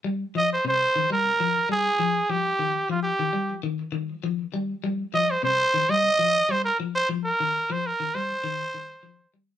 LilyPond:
<<
  \new Staff \with { instrumentName = "Trumpet" } { \time 4/4 \key ees \major \tempo 4 = 100 r8 ees''16 c''16 c''8. bes'4 aes'4 g'16~ | g'8. f'16 g'4 r2 | r8 ees''16 c''16 c''8. ees''4 c''16 bes'8 c''8 | bes'8. c''16 bes'8 c''2 r8 | }
  \new Staff \with { instrumentName = "Clean electric guitar" } { \clef bass \time 4/4 \key ees \major g8 f8 c8 ees16 g8 f8 g8 f8 f16~ | f16 ees8 f8 ees16 g8 ees8 ees8 f8 g8 | g8 f8 c8 ees16 g8 f8 g8 f8 f16~ | f16 ees8 f8 ees16 g8 ees8 ees8 f8 g8 | }
>>